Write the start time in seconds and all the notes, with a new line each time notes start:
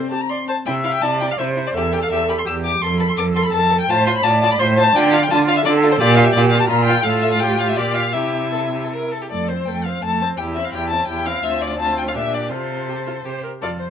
Already playing: C4
0.11 G4 A5
0.21 A#5
0.29 D5 C6
0.48 C5 A5
0.65 C3 E4 E5 G5
0.84 E4 F5
0.93 G5
1.02 C3 E4 D5 A5
1.20 E4 G5
1.31 F5
1.38 C3 E4 C5 E5
1.56 E4
1.67 D5
1.74 E2 G4 A4 E5
1.92 G4 G5
2.02 F5
2.10 E2 G4 E5
2.28 G4 B5
2.38 C6
2.45 E2 G4 E6
2.65 G4 D6
2.81 F2 A4 C6
2.99 A4 B5
3.09 C6
3.17 F2 A4 D6
3.35 A4 C6
3.44 B5
3.53 F2 A4 A5
3.70 A4
3.80 G5
3.89 A2 F4 C5 A5
4.06 F4 C6
4.16 B5
4.23 A2 F4 D5 A5
4.42 F4 A5
4.52 B5
4.59 A2 F4 C5 C6
4.77 F4 A5
4.95 D3 F4 D5 G5
5.12 F4 F5
5.23 G5
5.30 D3 F4 A5
5.48 F4 F5
5.57 E5
5.65 D3 F4 A4 D5
5.82 F4
5.91 C5
5.99 A#2 F4 G4 D5
6.15 F4 F5
6.24 E5
6.32 A#2 D5
6.37 F4
6.50 F4 F5
6.60 A5
6.68 A#2 F4 A#5
6.85 F4 G5
7.03 A2 F4 A4 F5
7.22 E5
7.32 F5
7.40 G4 G5
7.59 F5
7.68 E5
7.76 A#2 F4 G4 D5
7.94 F5
8.13 C3 E4 G4 E5
8.52 A4
8.72 G4
8.84 A4
8.92 A#4
9.11 A4
9.21 G4
9.30 F2 A3 A4 D5
9.48 C4 C5
9.65 F2 A3 A4 G5
9.84 C4 C5 F5
10.02 F2 A3 A4 A5
10.21 C4 C5 A5
10.37 E2 E4 G4 G5
10.54 C4 E4 E5
10.64 F5
10.73 E2 E4 G4 G5
10.89 C4 E4 A5
11.07 E2 E4 G4 G5
11.25 C4 E4 F5
11.43 D2 C4 F4 E5
11.61 D5
11.79 C4 F4 A5
11.97 G5
12.08 F5
12.14 A#2 D4 G4 E5
12.33 D5
12.50 C3 F4 A4 C5
12.88 G4
13.06 F4
13.25 C3 G4 C5
13.44 A#4
13.62 F2 F4 A4 D5
13.80 C5